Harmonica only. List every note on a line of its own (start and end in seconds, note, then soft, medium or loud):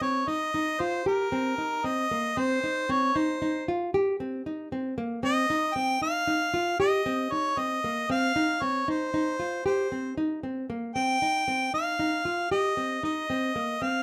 0.02 0.30 C#5 medium
0.28 0.82 D#5 loud
0.81 1.07 C5 medium
1.07 1.87 A#4 medium
1.85 2.39 D#5 loud
2.38 2.93 C5 loud
2.91 3.19 C#5 medium
3.17 3.68 C5 medium
5.25 5.78 D#5 loud
5.76 6.02 G5 loud
6.02 6.76 F5 loud
6.80 7.34 D#5 loud
7.32 7.60 C#5 medium
7.59 8.10 D#5 loud
8.11 8.64 F5 loud
8.63 8.91 C#5 loud
8.90 9.66 C5 medium
9.66 10.14 C5 medium
10.96 11.70 G5 loud
11.74 12.48 F5 loud
12.52 13.00 D#5 medium
13.05 13.84 D#5 loud
13.83 14.03 F5 loud